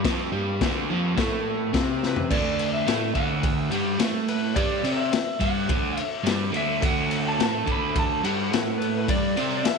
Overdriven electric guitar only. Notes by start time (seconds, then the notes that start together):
0.05 F2 F3
0.32 G2 G3
0.61 D2 D3
0.91 F2 F3
1.16 A2 A3
1.73 C3 C4
2.31 D2 D3
2.87 A2 A3
3.14 D2 D3
3.71 G2 G3
3.99 A2 A3
4.55 G2 G3
4.83 C3 C4
5.13 muted overdriven electric guitar stroke
5.40 G2 G3
5.69 D2 D3
6.24 G2 G3
6.51 D2 D3
6.82 D2 D3
7.39 A2 A3
7.64 D2 D3
8.24 G2 G3
8.52 A2 A3
9.09 G2 G3
9.37 C3 C4
9.65 muted overdriven electric guitar stroke